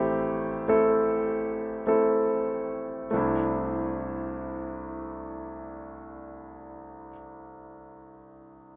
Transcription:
0.00 3.09 A1 medium
0.00 3.10 A2 medium
0.00 0.68 A3 medium
0.00 0.68 C4 medium
0.00 0.69 E4 medium
0.00 3.15 G4 medium
0.68 1.82 A3 medium
0.68 1.82 C4 medium
0.68 1.82 E4 medium
0.68 1.82 A4 medium
1.87 3.06 A3 medium
1.87 3.07 C4 soft
1.87 3.07 E4 medium
1.87 3.07 A4 medium
3.11 7.09 C2 medium
3.11 7.07 A3 medium
3.11 7.09 C4 soft
3.11 7.10 D4 soft
3.16 7.12 E4 medium

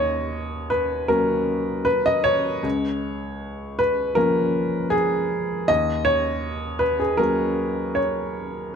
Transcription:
0.00 2.61 D#2 medium
0.00 0.71 C#5 medium
0.00 2.06 D#5 medium
0.70 1.09 B4 medium
1.08 2.60 F#3 soft
1.08 2.60 A#3 soft
1.08 2.61 C#4 soft
1.08 1.87 A#4 medium
1.85 2.05 B4 medium
2.06 2.25 D#5 medium
2.24 3.78 C#5 medium
2.63 5.64 C#2 medium
3.79 4.17 B4 medium
4.15 5.64 F3 soft
4.15 5.65 A#3 soft
4.15 5.64 C#4 soft
4.15 4.92 A#4 medium
4.90 5.68 G#4 medium
5.68 8.72 D#2 medium
5.68 6.06 D#5 loud
6.05 6.81 C#5 loud
6.79 7.00 B4 medium
7.00 7.20 G#4 medium
7.17 8.71 F#3 soft
7.17 8.72 A#3 soft
7.17 8.72 C#4 soft
7.17 7.96 A#4 medium
7.95 8.75 C#5 medium

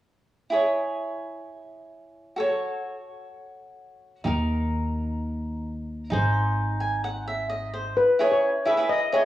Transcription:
0.50 2.34 E4 medium
0.50 2.35 G#4 medium
0.50 2.35 C#5 medium
2.36 4.20 F#4 medium
2.36 4.21 A4 soft
2.36 4.22 C#5 medium
4.24 6.08 D#2 medium
4.24 6.07 D#4 medium
4.24 6.09 A#4 medium
6.10 7.94 G#1 medium
6.10 7.93 D#4 medium
6.10 7.94 G#4 medium
6.10 7.72 C5 medium
6.80 7.02 G#5 medium
7.04 7.26 F#5 medium
7.27 7.49 E5 medium
7.50 7.72 D#5 medium
7.74 7.96 C5 medium
7.97 8.33 B4 medium
8.19 8.48 E4 medium
8.19 8.48 G#4 medium
8.19 8.49 C#5 medium
8.32 8.64 C#5 medium
8.65 8.73 E4 medium
8.65 8.74 G#4 medium
8.65 8.74 B4 medium
8.65 8.91 E5 medium
8.77 8.99 E4 medium
8.77 8.99 G#4 medium
8.77 9.00 B4 medium
8.89 9.14 D#5 loud
9.12 9.20 E4 medium
9.12 9.21 G#4 medium
9.12 9.25 C#5 medium
9.12 9.21 D#5 medium

